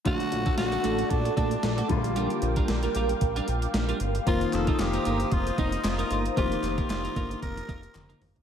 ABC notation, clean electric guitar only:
X:1
M:4/4
L:1/16
Q:"Swing 16ths" 1/4=114
K:Fmix
V:1 name="Clean electric guitar"
[A,D^FA] z2 [A,DFA] z [A,DFA] [A,DFA] z3 [A,DFA] z2 [A,DFA] z2 | [G,DFB] z2 [G,DFB] z [G,DFB] [G,DFB] z2 [G,DFB] z3 [G,DFB] z2 | [B,EFB] z2 [B,EFB] z [B,EFB] [B,EFB] z3 [B,EFB] z2 [B,EFB] [B,EFB] z | [B,EFB] z2 [B,EFB] z [B,EFB] [B,EFB] z3 [B,EFB] z2 [B,EFB] z2 |]